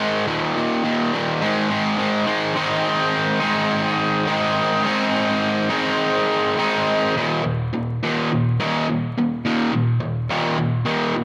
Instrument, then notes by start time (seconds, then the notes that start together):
overdriven electric guitar
0.00 G#2 D#3 G#3
0.27 D#2 A#2 D#3
0.56 D#2 A#2 D#3
0.83 D#2 A#2 D#3
1.13 D#2 A#2 D#3
1.41 G#2 D#3 G#3
1.71 G#2 D#3 G#3
1.98 G#2 D#3 G#3
2.26 G#2 D#3 G#3
2.54 G#2 D#3 G#3 C4 D#4
3.40 G#2 D#3 G#3 C4 D#4
4.26 G#2 D#3 G#3 C4 D#4
4.83 G#2 D#3 G#3 C4 D#4
5.70 G#2 D#3 G#3 C4 D#4
6.57 G#2 D#3 G#3 C4 D#4
7.16 D#2 A#2 D#3
7.44 D#2 A#2
7.73 D#2 A#2
8.03 D#2 A#2 D#3
8.32 D#2 A#2
8.60 D#2 A#2 D#3
8.89 D#2 A#2
9.18 D#2 A#2
9.45 D#2 A#2 D#3
9.72 D#2 A#2
10.01 D#2 A#2
10.29 D#2 A#2 D#3
10.58 D#2 A#2
10.85 D#2 A#2 D#3
11.15 D#2 A#2